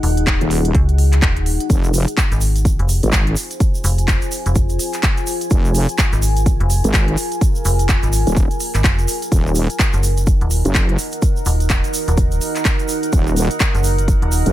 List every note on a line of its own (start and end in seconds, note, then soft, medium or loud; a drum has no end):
0.00 0.39 D#1 medium
0.00 1.66 D#4 medium
0.00 1.66 G#4 medium
0.00 1.66 F#5 medium
0.00 open hi-hat loud
0.17 closed hi-hat medium
0.27 kick loud
0.27 clap loud
0.27 closed hi-hat medium
0.41 0.73 D#1 loud
0.41 closed hi-hat soft
0.51 open hi-hat loud
0.65 closed hi-hat medium
0.75 1.21 C#2 loud
0.75 kick loud
0.75 closed hi-hat medium
0.89 closed hi-hat soft
0.98 open hi-hat loud
1.13 clap soft
1.13 closed hi-hat medium
1.22 kick loud
1.22 clap loud
1.22 closed hi-hat medium
1.37 closed hi-hat soft
1.46 open hi-hat loud
1.60 closed hi-hat medium
1.70 2.06 F1 loud
1.70 9.28 F4 medium
1.70 5.47 C5 medium
1.70 9.28 G#5 medium
1.70 kick loud
1.70 closed hi-hat medium
1.70 shaker medium
1.84 shaker soft
1.94 open hi-hat loud
1.94 shaker loud
2.08 closed hi-hat medium
2.08 shaker soft
2.17 kick loud
2.17 clap loud
2.17 closed hi-hat medium
2.17 shaker medium
2.32 2.77 G#1 loud
2.32 closed hi-hat soft
2.32 shaker soft
2.41 open hi-hat loud
2.41 shaker medium
2.56 closed hi-hat medium
2.56 shaker soft
2.65 kick loud
2.65 closed hi-hat medium
2.65 shaker medium
2.79 3.01 F1 loud
2.79 closed hi-hat soft
2.89 open hi-hat loud
2.89 shaker medium
3.03 3.35 G#1 loud
3.03 closed hi-hat medium
3.03 shaker soft
3.12 kick loud
3.12 clap loud
3.12 closed hi-hat medium
3.12 shaker medium
3.27 closed hi-hat soft
3.36 open hi-hat loud
3.36 shaker medium
3.51 closed hi-hat medium
3.51 shaker soft
3.60 kick loud
3.60 closed hi-hat medium
3.60 shaker medium
3.75 shaker soft
3.84 4.20 F1 loud
3.84 open hi-hat loud
3.84 shaker medium
3.98 closed hi-hat medium
3.98 shaker soft
4.08 kick loud
4.08 clap loud
4.08 closed hi-hat medium
4.08 shaker medium
4.22 closed hi-hat soft
4.22 shaker soft
4.32 open hi-hat loud
4.32 shaker medium
4.46 4.78 F1 loud
4.46 closed hi-hat medium
4.46 shaker soft
4.55 kick loud
4.55 closed hi-hat medium
4.55 shaker medium
4.69 closed hi-hat soft
4.69 shaker soft
4.79 open hi-hat loud
4.79 shaker medium
4.93 clap soft
4.93 closed hi-hat medium
4.93 shaker soft
5.03 kick loud
5.03 clap loud
5.03 closed hi-hat medium
5.03 shaker medium
5.17 closed hi-hat soft
5.17 shaker soft
5.27 open hi-hat loud
5.27 shaker loud
5.41 closed hi-hat medium
5.41 shaker soft
5.50 5.87 F1 loud
5.50 9.28 A#4 medium
5.50 kick loud
5.50 closed hi-hat medium
5.50 shaker medium
5.65 shaker soft
5.75 open hi-hat loud
5.75 shaker loud
5.89 closed hi-hat medium
5.89 shaker soft
5.98 kick loud
5.98 clap loud
5.98 closed hi-hat medium
5.98 shaker medium
6.13 6.58 G#1 loud
6.13 closed hi-hat soft
6.13 shaker soft
6.22 open hi-hat loud
6.22 shaker loud
6.36 closed hi-hat medium
6.36 shaker soft
6.46 kick loud
6.46 closed hi-hat medium
6.46 shaker medium
6.60 6.82 F1 loud
6.60 closed hi-hat soft
6.70 open hi-hat loud
6.70 shaker medium
6.84 7.16 G#1 medium
6.84 closed hi-hat medium
6.84 shaker soft
6.94 kick loud
6.94 clap loud
6.94 closed hi-hat medium
6.94 shaker medium
7.08 closed hi-hat soft
7.17 open hi-hat loud
7.17 shaker medium
7.32 closed hi-hat medium
7.32 shaker soft
7.41 kick loud
7.41 closed hi-hat medium
7.41 shaker medium
7.55 shaker soft
7.65 8.01 F1 loud
7.65 open hi-hat loud
7.65 shaker medium
7.79 closed hi-hat medium
7.79 shaker soft
7.89 kick loud
7.89 clap loud
7.89 closed hi-hat medium
7.89 shaker medium
8.03 8.25 G#1 loud
8.03 closed hi-hat soft
8.03 shaker soft
8.13 open hi-hat loud
8.13 shaker loud
8.27 8.49 D#1 loud
8.27 closed hi-hat medium
8.27 shaker soft
8.37 kick loud
8.37 closed hi-hat medium
8.37 shaker medium
8.51 closed hi-hat soft
8.51 shaker soft
8.60 open hi-hat loud
8.60 shaker medium
8.75 8.83 G#1 loud
8.75 clap soft
8.75 closed hi-hat medium
8.75 shaker soft
8.84 kick loud
8.84 clap loud
8.84 closed hi-hat medium
8.84 shaker soft
8.99 closed hi-hat soft
8.99 shaker soft
9.08 open hi-hat loud
9.08 shaker medium
9.22 closed hi-hat medium
9.22 shaker soft
9.32 9.68 D#1 loud
9.32 14.53 D#4 medium
9.32 14.53 A#4 medium
9.32 14.53 F#5 medium
9.32 kick loud
9.32 closed hi-hat medium
9.32 shaker medium
9.47 shaker soft
9.55 open hi-hat loud
9.55 shaker medium
9.70 closed hi-hat soft
9.70 shaker soft
9.79 kick loud
9.79 clap loud
9.79 closed hi-hat medium
9.79 shaker medium
9.93 10.39 F#1 loud
9.93 closed hi-hat soft
9.93 shaker soft
10.03 open hi-hat loud
10.03 shaker medium
10.17 closed hi-hat medium
10.17 shaker soft
10.27 kick loud
10.27 closed hi-hat medium
10.27 shaker medium
10.41 10.63 D#1 loud
10.41 closed hi-hat soft
10.51 open hi-hat loud
10.51 shaker medium
10.65 10.97 F#1 loud
10.65 closed hi-hat medium
10.65 shaker soft
10.75 kick loud
10.75 clap loud
10.75 closed hi-hat medium
10.75 shaker medium
10.89 closed hi-hat soft
10.99 open hi-hat loud
10.99 shaker medium
11.12 closed hi-hat medium
11.12 shaker soft
11.22 kick loud
11.22 closed hi-hat medium
11.22 shaker medium
11.36 shaker soft
11.46 11.82 D#1 loud
11.46 open hi-hat loud
11.46 shaker medium
11.60 closed hi-hat medium
11.60 shaker soft
11.69 kick loud
11.69 clap loud
11.69 closed hi-hat medium
11.69 shaker soft
11.84 closed hi-hat soft
11.84 shaker soft
11.94 open hi-hat loud
11.94 shaker loud
12.08 12.40 D#1 loud
12.08 closed hi-hat medium
12.08 shaker soft
12.17 kick loud
12.17 closed hi-hat medium
12.17 shaker soft
12.32 closed hi-hat soft
12.32 shaker soft
12.41 open hi-hat loud
12.41 shaker medium
12.56 clap soft
12.56 closed hi-hat medium
12.56 shaker soft
12.65 kick loud
12.65 clap loud
12.65 closed hi-hat medium
12.65 shaker medium
12.79 closed hi-hat soft
12.79 shaker soft
12.88 open hi-hat loud
12.88 shaker medium
13.03 closed hi-hat medium
13.03 shaker soft
13.13 13.48 D#1 medium
13.13 kick loud
13.13 closed hi-hat medium
13.13 shaker medium
13.27 shaker soft
13.36 open hi-hat loud
13.36 shaker medium
13.51 closed hi-hat medium
13.51 shaker soft
13.60 kick loud
13.60 clap loud
13.60 closed hi-hat medium
13.60 shaker medium
13.75 14.20 F#1 medium
13.75 closed hi-hat soft
13.75 shaker soft
13.84 open hi-hat loud
13.84 shaker medium
13.98 closed hi-hat medium
13.98 shaker soft
14.08 kick loud
14.08 closed hi-hat medium
14.08 shaker soft
14.22 14.44 D#1 loud
14.22 closed hi-hat soft
14.32 open hi-hat loud
14.32 shaker medium
14.46 14.53 F#1 loud
14.46 closed hi-hat medium
14.46 shaker soft